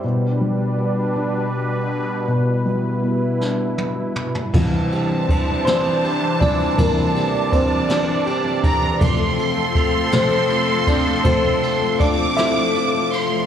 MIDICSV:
0, 0, Header, 1, 6, 480
1, 0, Start_track
1, 0, Tempo, 749064
1, 21, Time_signature, 6, 3, 24, 8
1, 8626, End_track
2, 0, Start_track
2, 0, Title_t, "Violin section"
2, 0, Program_c, 0, 48
2, 2909, Note_on_c, 0, 81, 95
2, 5513, Note_off_c, 0, 81, 0
2, 5538, Note_on_c, 0, 82, 94
2, 5776, Note_off_c, 0, 82, 0
2, 5777, Note_on_c, 0, 84, 109
2, 7667, Note_off_c, 0, 84, 0
2, 7685, Note_on_c, 0, 86, 115
2, 8412, Note_off_c, 0, 86, 0
2, 8414, Note_on_c, 0, 84, 96
2, 8626, Note_off_c, 0, 84, 0
2, 8626, End_track
3, 0, Start_track
3, 0, Title_t, "Analog synth pad"
3, 0, Program_c, 1, 89
3, 0, Note_on_c, 1, 55, 73
3, 19, Note_on_c, 1, 47, 68
3, 20, Note_on_c, 1, 62, 63
3, 20, Note_on_c, 1, 71, 74
3, 1444, Note_off_c, 1, 62, 0
3, 1470, Note_on_c, 1, 64, 60
3, 2879, Note_off_c, 1, 47, 0
3, 2880, Note_off_c, 1, 55, 0
3, 2880, Note_off_c, 1, 71, 0
3, 2897, Note_off_c, 1, 64, 0
3, 2913, Note_on_c, 1, 72, 83
3, 2914, Note_on_c, 1, 52, 78
3, 2914, Note_on_c, 1, 62, 71
3, 4337, Note_off_c, 1, 72, 0
3, 4339, Note_on_c, 1, 74, 90
3, 5753, Note_off_c, 1, 62, 0
3, 5754, Note_off_c, 1, 52, 0
3, 5756, Note_off_c, 1, 74, 0
3, 5773, Note_on_c, 1, 69, 91
3, 5775, Note_on_c, 1, 60, 71
3, 5777, Note_on_c, 1, 53, 80
3, 8626, Note_off_c, 1, 53, 0
3, 8626, Note_off_c, 1, 60, 0
3, 8626, Note_off_c, 1, 69, 0
3, 8626, End_track
4, 0, Start_track
4, 0, Title_t, "Steel-string acoustic guitar"
4, 0, Program_c, 2, 25
4, 2912, Note_on_c, 2, 52, 78
4, 3034, Note_on_c, 2, 60, 58
4, 3156, Note_on_c, 2, 67, 59
4, 3273, Note_off_c, 2, 60, 0
4, 3276, Note_on_c, 2, 60, 58
4, 3395, Note_on_c, 2, 62, 60
4, 3515, Note_off_c, 2, 60, 0
4, 3517, Note_on_c, 2, 60, 54
4, 3626, Note_off_c, 2, 52, 0
4, 3633, Note_on_c, 2, 52, 77
4, 3753, Note_off_c, 2, 60, 0
4, 3756, Note_on_c, 2, 60, 59
4, 3862, Note_off_c, 2, 67, 0
4, 3869, Note_on_c, 2, 67, 69
4, 3990, Note_off_c, 2, 60, 0
4, 3992, Note_on_c, 2, 60, 58
4, 4102, Note_off_c, 2, 62, 0
4, 4110, Note_on_c, 2, 62, 59
4, 4226, Note_off_c, 2, 60, 0
4, 4229, Note_on_c, 2, 60, 59
4, 4337, Note_off_c, 2, 52, 0
4, 4345, Note_on_c, 2, 52, 83
4, 4462, Note_off_c, 2, 60, 0
4, 4465, Note_on_c, 2, 60, 60
4, 4576, Note_off_c, 2, 67, 0
4, 4584, Note_on_c, 2, 67, 64
4, 4700, Note_off_c, 2, 60, 0
4, 4703, Note_on_c, 2, 60, 56
4, 4815, Note_off_c, 2, 62, 0
4, 4823, Note_on_c, 2, 62, 63
4, 4937, Note_off_c, 2, 60, 0
4, 4939, Note_on_c, 2, 60, 59
4, 5047, Note_off_c, 2, 52, 0
4, 5054, Note_on_c, 2, 52, 86
4, 5171, Note_off_c, 2, 60, 0
4, 5173, Note_on_c, 2, 60, 58
4, 5286, Note_off_c, 2, 67, 0
4, 5293, Note_on_c, 2, 67, 68
4, 5408, Note_off_c, 2, 60, 0
4, 5411, Note_on_c, 2, 60, 63
4, 5521, Note_off_c, 2, 62, 0
4, 5528, Note_on_c, 2, 62, 62
4, 5648, Note_off_c, 2, 60, 0
4, 5650, Note_on_c, 2, 60, 61
4, 5765, Note_off_c, 2, 60, 0
4, 5768, Note_on_c, 2, 57, 77
4, 5819, Note_off_c, 2, 52, 0
4, 5819, Note_off_c, 2, 62, 0
4, 5820, Note_off_c, 2, 67, 0
4, 5883, Note_off_c, 2, 57, 0
4, 5890, Note_on_c, 2, 57, 62
4, 6010, Note_on_c, 2, 65, 67
4, 6122, Note_off_c, 2, 57, 0
4, 6130, Note_on_c, 2, 57, 59
4, 6250, Note_on_c, 2, 60, 62
4, 6360, Note_off_c, 2, 57, 0
4, 6368, Note_on_c, 2, 57, 55
4, 6480, Note_off_c, 2, 57, 0
4, 6488, Note_on_c, 2, 57, 82
4, 6599, Note_off_c, 2, 57, 0
4, 6606, Note_on_c, 2, 57, 59
4, 6723, Note_off_c, 2, 65, 0
4, 6726, Note_on_c, 2, 65, 69
4, 6839, Note_off_c, 2, 57, 0
4, 6846, Note_on_c, 2, 57, 56
4, 6959, Note_off_c, 2, 60, 0
4, 6966, Note_on_c, 2, 60, 61
4, 7083, Note_off_c, 2, 57, 0
4, 7090, Note_on_c, 2, 57, 60
4, 7202, Note_off_c, 2, 57, 0
4, 7210, Note_on_c, 2, 57, 82
4, 7322, Note_off_c, 2, 57, 0
4, 7329, Note_on_c, 2, 57, 57
4, 7447, Note_off_c, 2, 65, 0
4, 7450, Note_on_c, 2, 65, 68
4, 7562, Note_off_c, 2, 57, 0
4, 7569, Note_on_c, 2, 57, 55
4, 7683, Note_off_c, 2, 60, 0
4, 7691, Note_on_c, 2, 60, 63
4, 7804, Note_off_c, 2, 57, 0
4, 7812, Note_on_c, 2, 57, 56
4, 7927, Note_off_c, 2, 57, 0
4, 7934, Note_on_c, 2, 57, 80
4, 8045, Note_off_c, 2, 57, 0
4, 8053, Note_on_c, 2, 57, 56
4, 8171, Note_off_c, 2, 65, 0
4, 8174, Note_on_c, 2, 65, 67
4, 8287, Note_off_c, 2, 57, 0
4, 8294, Note_on_c, 2, 57, 56
4, 8410, Note_off_c, 2, 60, 0
4, 8417, Note_on_c, 2, 60, 61
4, 8527, Note_off_c, 2, 57, 0
4, 8535, Note_on_c, 2, 57, 58
4, 8626, Note_off_c, 2, 57, 0
4, 8626, Note_off_c, 2, 60, 0
4, 8626, Note_off_c, 2, 65, 0
4, 8626, End_track
5, 0, Start_track
5, 0, Title_t, "Felt piano"
5, 0, Program_c, 3, 0
5, 0, Control_c, 3, 64, 127
5, 26, Note_on_c, 3, 47, 53
5, 30, Control_c, 3, 64, 0
5, 155, Control_c, 3, 64, 127
5, 264, Note_on_c, 3, 55, 43
5, 502, Note_on_c, 3, 59, 43
5, 743, Note_on_c, 3, 62, 50
5, 1195, Note_off_c, 3, 55, 0
5, 1434, Note_off_c, 3, 59, 0
5, 1436, Note_off_c, 3, 47, 0
5, 1461, Note_on_c, 3, 47, 56
5, 1675, Note_off_c, 3, 62, 0
5, 1701, Note_on_c, 3, 55, 43
5, 1943, Note_on_c, 3, 59, 41
5, 2183, Note_on_c, 3, 62, 44
5, 2639, Note_off_c, 3, 55, 0
5, 2882, Note_off_c, 3, 47, 0
5, 2882, Note_off_c, 3, 59, 0
5, 2886, Note_off_c, 3, 62, 0
5, 2905, Note_on_c, 3, 48, 54
5, 2909, Note_on_c, 3, 52, 47
5, 2912, Note_on_c, 3, 55, 58
5, 2915, Control_c, 3, 64, 0
5, 3012, Control_c, 3, 64, 127
5, 3226, Note_off_c, 3, 48, 0
5, 3229, Note_off_c, 3, 52, 0
5, 3230, Note_off_c, 3, 55, 0
5, 3619, Note_on_c, 3, 72, 97
5, 3634, Note_on_c, 3, 60, 77
5, 4086, Note_off_c, 3, 60, 0
5, 4103, Note_on_c, 3, 74, 97
5, 4108, Note_on_c, 3, 48, 46
5, 4111, Note_on_c, 3, 52, 45
5, 4113, Note_on_c, 3, 55, 51
5, 4117, Note_on_c, 3, 62, 78
5, 4118, Note_off_c, 3, 72, 0
5, 4324, Note_off_c, 3, 48, 0
5, 4325, Note_off_c, 3, 52, 0
5, 4327, Note_off_c, 3, 55, 0
5, 4336, Note_off_c, 3, 62, 0
5, 4339, Note_on_c, 3, 70, 89
5, 4343, Note_on_c, 3, 48, 56
5, 4349, Note_on_c, 3, 52, 48
5, 4351, Note_on_c, 3, 55, 63
5, 4352, Note_off_c, 3, 74, 0
5, 4353, Note_on_c, 3, 58, 70
5, 4663, Note_off_c, 3, 48, 0
5, 4666, Note_off_c, 3, 52, 0
5, 4667, Note_off_c, 3, 55, 0
5, 4795, Note_off_c, 3, 70, 0
5, 4802, Note_off_c, 3, 58, 0
5, 4817, Note_on_c, 3, 72, 83
5, 4830, Note_on_c, 3, 60, 70
5, 5048, Note_off_c, 3, 60, 0
5, 5055, Note_on_c, 3, 74, 87
5, 5063, Note_on_c, 3, 62, 70
5, 5066, Note_off_c, 3, 72, 0
5, 5567, Note_off_c, 3, 74, 0
5, 5572, Note_off_c, 3, 62, 0
5, 5772, Note_on_c, 3, 41, 59
5, 5777, Note_on_c, 3, 48, 48
5, 5779, Note_on_c, 3, 57, 63
5, 5783, Control_c, 3, 64, 0
5, 5895, Control_c, 3, 64, 127
5, 6480, Note_off_c, 3, 41, 0
5, 6483, Note_off_c, 3, 48, 0
5, 6485, Note_off_c, 3, 57, 0
5, 6490, Note_on_c, 3, 41, 50
5, 6492, Note_on_c, 3, 48, 45
5, 6493, Note_on_c, 3, 72, 81
5, 6495, Note_on_c, 3, 57, 54
5, 6498, Note_on_c, 3, 60, 65
5, 6705, Note_off_c, 3, 41, 0
5, 6706, Note_off_c, 3, 48, 0
5, 6708, Note_off_c, 3, 57, 0
5, 6947, Note_off_c, 3, 60, 0
5, 6970, Note_on_c, 3, 74, 80
5, 6977, Note_on_c, 3, 62, 67
5, 6985, Note_off_c, 3, 72, 0
5, 7197, Note_off_c, 3, 62, 0
5, 7202, Note_on_c, 3, 72, 87
5, 7205, Note_on_c, 3, 41, 53
5, 7209, Note_on_c, 3, 48, 48
5, 7213, Note_on_c, 3, 57, 60
5, 7213, Note_on_c, 3, 60, 68
5, 7217, Note_off_c, 3, 74, 0
5, 7668, Note_off_c, 3, 60, 0
5, 7686, Note_on_c, 3, 74, 86
5, 7701, Note_on_c, 3, 62, 69
5, 7703, Note_off_c, 3, 72, 0
5, 7905, Note_off_c, 3, 41, 0
5, 7907, Note_off_c, 3, 48, 0
5, 7910, Note_off_c, 3, 57, 0
5, 7921, Note_off_c, 3, 62, 0
5, 7923, Note_on_c, 3, 76, 89
5, 7938, Note_off_c, 3, 74, 0
5, 7939, Note_on_c, 3, 64, 75
5, 8445, Note_off_c, 3, 76, 0
5, 8453, Note_off_c, 3, 64, 0
5, 8626, End_track
6, 0, Start_track
6, 0, Title_t, "Drums"
6, 2187, Note_on_c, 9, 38, 43
6, 2251, Note_off_c, 9, 38, 0
6, 2423, Note_on_c, 9, 48, 64
6, 2487, Note_off_c, 9, 48, 0
6, 2665, Note_on_c, 9, 45, 76
6, 2729, Note_off_c, 9, 45, 0
6, 2786, Note_on_c, 9, 43, 70
6, 2850, Note_off_c, 9, 43, 0
6, 2908, Note_on_c, 9, 36, 111
6, 2909, Note_on_c, 9, 49, 93
6, 2972, Note_off_c, 9, 36, 0
6, 2973, Note_off_c, 9, 49, 0
6, 3154, Note_on_c, 9, 51, 43
6, 3218, Note_off_c, 9, 51, 0
6, 3390, Note_on_c, 9, 36, 85
6, 3396, Note_on_c, 9, 51, 62
6, 3454, Note_off_c, 9, 36, 0
6, 3460, Note_off_c, 9, 51, 0
6, 3632, Note_on_c, 9, 51, 75
6, 3638, Note_on_c, 9, 38, 96
6, 3696, Note_off_c, 9, 51, 0
6, 3702, Note_off_c, 9, 38, 0
6, 3873, Note_on_c, 9, 51, 38
6, 3937, Note_off_c, 9, 51, 0
6, 4108, Note_on_c, 9, 36, 90
6, 4112, Note_on_c, 9, 51, 61
6, 4172, Note_off_c, 9, 36, 0
6, 4176, Note_off_c, 9, 51, 0
6, 4347, Note_on_c, 9, 36, 112
6, 4347, Note_on_c, 9, 51, 82
6, 4411, Note_off_c, 9, 36, 0
6, 4411, Note_off_c, 9, 51, 0
6, 4589, Note_on_c, 9, 51, 41
6, 4653, Note_off_c, 9, 51, 0
6, 4822, Note_on_c, 9, 36, 81
6, 4823, Note_on_c, 9, 51, 62
6, 4886, Note_off_c, 9, 36, 0
6, 4887, Note_off_c, 9, 51, 0
6, 5058, Note_on_c, 9, 51, 76
6, 5064, Note_on_c, 9, 38, 96
6, 5122, Note_off_c, 9, 51, 0
6, 5128, Note_off_c, 9, 38, 0
6, 5297, Note_on_c, 9, 51, 41
6, 5361, Note_off_c, 9, 51, 0
6, 5535, Note_on_c, 9, 36, 94
6, 5536, Note_on_c, 9, 51, 58
6, 5599, Note_off_c, 9, 36, 0
6, 5600, Note_off_c, 9, 51, 0
6, 5773, Note_on_c, 9, 51, 83
6, 5774, Note_on_c, 9, 36, 118
6, 5837, Note_off_c, 9, 51, 0
6, 5838, Note_off_c, 9, 36, 0
6, 6015, Note_on_c, 9, 51, 44
6, 6079, Note_off_c, 9, 51, 0
6, 6249, Note_on_c, 9, 36, 83
6, 6250, Note_on_c, 9, 51, 60
6, 6313, Note_off_c, 9, 36, 0
6, 6314, Note_off_c, 9, 51, 0
6, 6486, Note_on_c, 9, 51, 79
6, 6492, Note_on_c, 9, 38, 97
6, 6550, Note_off_c, 9, 51, 0
6, 6556, Note_off_c, 9, 38, 0
6, 6726, Note_on_c, 9, 51, 38
6, 6791, Note_off_c, 9, 51, 0
6, 6966, Note_on_c, 9, 36, 84
6, 6966, Note_on_c, 9, 51, 60
6, 7030, Note_off_c, 9, 36, 0
6, 7031, Note_off_c, 9, 51, 0
6, 7205, Note_on_c, 9, 51, 80
6, 7208, Note_on_c, 9, 36, 112
6, 7269, Note_off_c, 9, 51, 0
6, 7272, Note_off_c, 9, 36, 0
6, 7454, Note_on_c, 9, 51, 42
6, 7518, Note_off_c, 9, 51, 0
6, 7689, Note_on_c, 9, 36, 80
6, 7692, Note_on_c, 9, 51, 63
6, 7753, Note_off_c, 9, 36, 0
6, 7756, Note_off_c, 9, 51, 0
6, 7931, Note_on_c, 9, 51, 75
6, 7937, Note_on_c, 9, 38, 95
6, 7995, Note_off_c, 9, 51, 0
6, 8001, Note_off_c, 9, 38, 0
6, 8172, Note_on_c, 9, 51, 38
6, 8236, Note_off_c, 9, 51, 0
6, 8415, Note_on_c, 9, 51, 62
6, 8479, Note_off_c, 9, 51, 0
6, 8626, End_track
0, 0, End_of_file